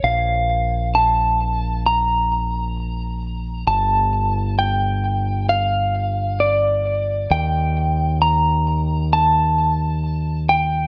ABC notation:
X:1
M:4/4
L:1/8
Q:1/4=66
K:Bblyd
V:1 name="Electric slide guitar"
f2 a2 b4 | a2 g2 f2 d2 | g2 b2 a3 g |]
V:2 name="Fingered electric bass" clef=bass
B,,,8 | G,,,8 | _E,,8 |]